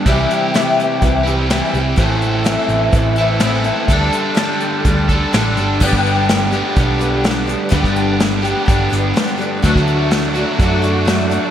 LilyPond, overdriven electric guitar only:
\new Staff \with { instrumentName = "Overdriven electric guitar" } { \time 4/4 \key g \major \tempo 4 = 125 <c g c' e' g'>2~ <c g c' e' g'>8 <c g c' e' g'>8 <c g c' e' g'>4 | <a, e c' e' a'>2~ <a, e c' e' a'>8 <a, e c' e' a'>8 <a, e c' e' a'>4 | <d g d' a'>2~ <d g d' a'>8 <d g d' a'>8 <d g d' a'>4 | <g, d g b d' g'>4. <g, d g b d' g'>2~ <g, d g b d' g'>8 |
<g, d g b d' g'>4. <g, d g b d' g'>2~ <g, d g b d' g'>8 | <d fis a d' fis'>4. <d fis a d' fis'>2~ <d fis a d' fis'>8 | }